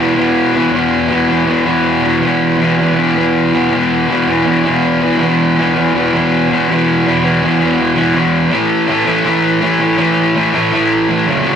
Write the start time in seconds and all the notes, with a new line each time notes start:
Already playing: E2 B2
0.00 E3
0.16 B2 E3
0.53 B2 E3
0.72 E2 B2 E3
1.09 E2 B2 E3
1.28 B2 E3
1.46 E2 B2 E3
1.65 B2 E3
2.02 B2 E3
2.21 E2 B2 E3
2.59 E2 B2 E3
2.77 E3
2.81 B2
2.95 E2 B2
2.99 E3
3.15 B2 E3
3.52 B2 E3
3.70 E2 B2 E3
4.08 E2 B2 E3
4.27 B2 E3
4.44 E2 B2 E3
4.64 B2 E3
5.00 B2 E3
5.19 E2 B2 E3
5.56 E2 B2 E3
5.75 B2 E3
5.93 E2 B2 E3
6.13 B2 E3
6.50 B2 E3
6.68 E2 B2 E3
7.04 E2 B2 E3
7.24 B2 E3
7.41 E2 B2 E3
7.60 B2 E3
7.95 B2 E3
8.14 E2 B2 E3
8.52 A2 E3 A3
8.88 A2 E3 A3
9.06 A2 E3 A3
9.25 A2 E3 A3
9.61 A2 E3 A3
9.79 A2 E3 A3
9.98 A2 E3 A3
10.36 A2 E3 A3
10.54 A2 E3 A3
10.72 A2 E3 A3
11.09 A2 E3 A3
11.26 F#2 C#3 F#3
11.44 F#2 C#3 F#3